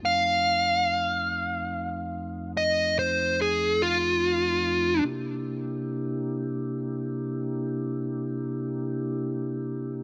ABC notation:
X:1
M:12/8
L:1/8
Q:3/8=48
K:Fmix
V:1 name="Lead electric guitar"
f6 e c _A F3 | z12 |]
V:2 name="Tonewheel organ"
[F,,F,A,CE]12 | [C,B,D=EG]12 |]